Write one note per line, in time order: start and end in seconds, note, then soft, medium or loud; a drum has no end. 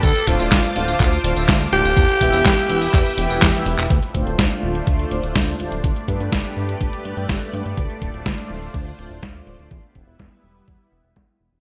0.00 0.12 D2 loud
0.00 0.29 A4 loud
0.00 1.95 C5 medium
0.00 1.95 F5 medium
0.00 1.93 A5 medium
0.00 1.95 D6 medium
0.00 kick loud
0.00 closed hi-hat loud
0.00 tambourine medium
0.15 closed hi-hat soft
0.15 tambourine soft
0.27 0.37 D1 medium
0.27 0.58 D3 medium
0.27 0.58 A3 medium
0.27 0.58 D4 medium
0.27 0.58 F4 medium
0.27 0.75 F4 medium
0.27 0.58 C5 loud
0.27 kick medium
0.27 open hi-hat loud
0.39 0.49 D1 loud
0.39 closed hi-hat soft
0.39 tambourine medium
0.51 0.61 D2 loud
0.51 kick loud
0.51 snare loud
0.51 clap medium
0.51 closed hi-hat loud
0.51 tambourine medium
0.64 closed hi-hat soft
0.64 tambourine soft
0.76 0.94 D1 medium
0.76 0.95 D3 medium
0.76 0.95 A3 medium
0.76 0.95 D4 medium
0.76 1.42 F4 medium
0.76 0.95 F4 medium
0.76 0.95 C5 loud
0.76 open hi-hat loud
0.88 closed hi-hat soft
0.88 tambourine medium
1.00 1.18 D2 medium
1.00 kick loud
1.00 clap medium
1.00 closed hi-hat loud
1.00 tambourine soft
1.12 closed hi-hat soft
1.12 tambourine soft
1.24 1.33 D1 medium
1.24 1.33 D3 medium
1.24 1.33 A3 medium
1.24 1.33 D4 medium
1.24 1.33 F4 medium
1.24 1.33 C5 loud
1.24 open hi-hat loud
1.36 1.46 D1 medium
1.36 1.55 D3 medium
1.36 1.55 A3 medium
1.36 1.55 D4 medium
1.36 1.55 F4 medium
1.36 1.55 E5 medium
1.36 closed hi-hat soft
1.36 tambourine medium
1.48 1.67 D2 loud
1.48 kick loud
1.48 snare loud
1.48 clap medium
1.48 closed hi-hat loud
1.48 tambourine medium
1.61 closed hi-hat soft
1.61 tambourine soft
1.72 1.82 D1 loud
1.72 1.92 A3 medium
1.72 1.92 D4 medium
1.72 1.92 F4 medium
1.72 3.62 G4 loud
1.72 1.92 C5 loud
1.72 open hi-hat loud
1.85 1.94 D1 medium
1.85 closed hi-hat soft
1.85 tambourine medium
1.97 2.06 E2 loud
1.97 3.88 B4 medium
1.97 3.88 E5 medium
1.97 3.88 G5 medium
1.97 3.88 E6 medium
1.97 kick loud
1.97 closed hi-hat loud
1.97 tambourine soft
2.09 closed hi-hat soft
2.09 tambourine soft
2.21 2.30 E1 medium
2.21 2.51 E3 medium
2.21 2.51 B3 medium
2.21 2.51 E4 medium
2.21 2.51 G4 medium
2.21 2.51 E5 loud
2.21 kick medium
2.21 open hi-hat loud
2.33 2.42 E1 loud
2.33 closed hi-hat soft
2.33 tambourine medium
2.45 2.54 E2 loud
2.45 kick loud
2.45 snare loud
2.45 clap medium
2.45 closed hi-hat loud
2.45 tambourine soft
2.57 closed hi-hat soft
2.57 tambourine soft
2.69 2.88 E1 medium
2.69 2.88 E3 medium
2.69 2.88 B3 medium
2.69 2.88 E4 medium
2.69 2.88 G4 medium
2.69 2.88 E5 medium
2.69 open hi-hat loud
2.82 closed hi-hat soft
2.82 tambourine medium
2.93 3.03 E2 medium
2.93 kick loud
2.93 clap medium
2.93 closed hi-hat loud
2.93 tambourine soft
3.06 closed hi-hat soft
3.06 tambourine soft
3.18 3.27 E1 medium
3.18 3.51 E3 loud
3.18 3.51 B3 loud
3.18 3.51 E4 medium
3.18 3.51 G4 medium
3.18 3.51 G5 loud
3.18 open hi-hat loud
3.30 3.39 E1 medium
3.30 closed hi-hat soft
3.30 tambourine medium
3.42 3.51 E2 loud
3.42 kick loud
3.42 snare loud
3.42 clap loud
3.42 closed hi-hat loud
3.42 tambourine soft
3.54 3.63 E3 loud
3.54 3.63 B3 medium
3.54 3.63 E4 medium
3.54 3.63 G4 medium
3.54 3.63 E5 loud
3.54 closed hi-hat soft
3.54 tambourine soft
3.66 3.75 E1 loud
3.66 3.85 B3 medium
3.66 3.85 E4 medium
3.66 3.85 G4 medium
3.66 3.85 E5 medium
3.66 open hi-hat loud
3.78 3.87 E1 medium
3.78 clap medium
3.78 closed hi-hat soft
3.78 tambourine medium
3.90 4.00 D2 loud
3.90 5.82 A3 medium
3.90 7.74 D4 medium
3.90 5.82 F4 medium
3.90 5.82 C5 medium
3.90 9.67 D5 medium
3.90 kick loud
3.90 closed hi-hat loud
4.03 closed hi-hat soft
4.14 4.24 D1 medium
4.14 4.45 D3 medium
4.14 4.45 A3 medium
4.14 4.45 D4 medium
4.14 4.45 F4 medium
4.14 4.45 C5 loud
4.14 kick medium
4.14 closed hi-hat medium
4.27 4.36 D1 loud
4.27 closed hi-hat soft
4.39 4.48 D2 loud
4.39 kick loud
4.39 snare loud
4.39 closed hi-hat loud
4.51 closed hi-hat soft
4.63 4.81 D1 medium
4.63 4.82 D3 medium
4.63 4.82 A3 medium
4.63 4.82 D4 medium
4.63 4.82 F4 medium
4.63 4.82 C5 medium
4.75 closed hi-hat soft
4.87 5.06 D2 medium
4.87 kick loud
4.87 closed hi-hat medium
4.99 closed hi-hat soft
5.11 5.21 D1 medium
5.11 5.21 D3 medium
5.11 5.21 A3 medium
5.11 5.21 D4 medium
5.11 5.21 F4 medium
5.11 5.21 C5 loud
5.11 closed hi-hat medium
5.23 5.33 D1 medium
5.23 5.42 D3 medium
5.23 5.42 A3 medium
5.23 5.42 D4 medium
5.23 5.42 F4 medium
5.23 5.42 E5 medium
5.23 closed hi-hat soft
5.35 5.54 D2 loud
5.35 kick loud
5.35 snare loud
5.35 closed hi-hat medium
5.48 closed hi-hat soft
5.60 5.69 D1 loud
5.60 5.79 G2 medium
5.60 5.79 A3 medium
5.60 5.79 D4 medium
5.60 5.79 F4 medium
5.60 5.79 C5 medium
5.60 closed hi-hat medium
5.72 5.81 D1 medium
5.72 closed hi-hat soft
5.84 5.93 G1 loud
5.84 9.67 A3 medium
5.84 7.76 G4 medium
5.84 7.76 B4 medium
5.84 kick loud
5.84 closed hi-hat medium
5.96 closed hi-hat soft
6.08 6.17 G2 medium
6.08 6.39 G2 medium
6.08 6.39 A3 medium
6.08 6.39 D4 medium
6.08 6.39 G4 medium
6.08 6.39 B4 medium
6.08 kick medium
6.08 closed hi-hat medium
6.20 6.29 G2 loud
6.20 closed hi-hat soft
6.32 6.42 G1 loud
6.32 kick loud
6.32 snare loud
6.32 closed hi-hat medium
6.45 closed hi-hat soft
6.57 6.76 G2 medium
6.57 6.75 G2 medium
6.57 6.76 A3 medium
6.57 6.76 D4 medium
6.57 6.76 G4 medium
6.57 6.76 B4 medium
6.69 closed hi-hat soft
6.81 6.90 G1 medium
6.81 kick loud
6.81 closed hi-hat medium
6.93 closed hi-hat soft
7.05 7.14 G2 medium
7.05 7.14 A3 medium
7.05 7.14 D4 medium
7.05 7.14 G4 medium
7.05 7.14 B4 loud
7.05 closed hi-hat medium
7.17 7.36 G2 medium
7.17 7.26 G2 medium
7.17 7.36 A3 medium
7.17 7.36 D4 medium
7.17 7.36 G4 medium
7.17 7.36 E5 medium
7.17 closed hi-hat soft
7.29 7.38 G1 loud
7.29 kick loud
7.29 snare loud
7.29 closed hi-hat medium
7.42 closed hi-hat soft
7.53 7.63 G2 medium
7.53 7.72 D3 medium
7.53 7.72 A3 medium
7.53 7.72 D4 medium
7.53 7.72 G4 medium
7.53 7.72 B4 medium
7.53 closed hi-hat medium
7.65 7.75 G2 medium
7.65 closed hi-hat soft
7.77 7.87 D2 loud
7.77 9.69 D4 medium
7.77 9.69 F4 medium
7.77 9.69 C5 medium
7.77 kick loud
7.77 closed hi-hat medium
7.90 closed hi-hat soft
8.02 8.11 D1 medium
8.02 kick medium
8.02 closed hi-hat medium
8.14 8.23 D1 loud
8.14 closed hi-hat soft
8.26 8.35 D2 loud
8.26 kick loud
8.26 snare loud
8.26 closed hi-hat medium
8.38 closed hi-hat soft
8.50 8.69 D1 medium
8.62 closed hi-hat soft
8.74 8.93 D2 medium
8.74 kick loud
8.74 closed hi-hat medium
8.87 closed hi-hat soft
8.98 9.08 D1 medium
8.98 closed hi-hat medium
9.11 9.20 D1 medium
9.11 closed hi-hat soft
9.23 9.41 D2 loud
9.23 kick loud
9.23 snare loud
9.23 closed hi-hat medium
9.35 closed hi-hat soft
9.47 9.56 D1 loud
9.47 closed hi-hat medium
9.59 9.68 D1 medium
9.59 closed hi-hat soft
9.71 9.80 E2 loud
9.71 11.60 G3 medium
9.71 11.60 B3 medium
9.71 11.60 E4 medium
9.71 11.60 B4 medium
9.71 11.60 E5 medium
9.71 kick loud
9.71 closed hi-hat medium
9.84 closed hi-hat soft
9.95 10.04 E1 medium
9.95 kick medium
9.95 closed hi-hat medium
10.07 10.16 E1 loud
10.07 closed hi-hat soft
10.19 10.29 E2 loud
10.19 kick loud
10.19 snare loud
10.19 closed hi-hat medium
10.32 closed hi-hat soft
10.44 10.62 E1 medium
10.56 closed hi-hat soft
10.68 10.77 E2 medium
10.68 kick loud
10.68 closed hi-hat medium
10.80 closed hi-hat soft
10.92 11.01 E1 loud
10.92 closed hi-hat medium
11.04 11.13 E1 medium
11.04 closed hi-hat soft
11.16 11.25 E2 loud
11.16 kick loud
11.16 snare loud
11.40 11.50 E1 medium
11.40 closed hi-hat medium
11.52 11.60 E1 medium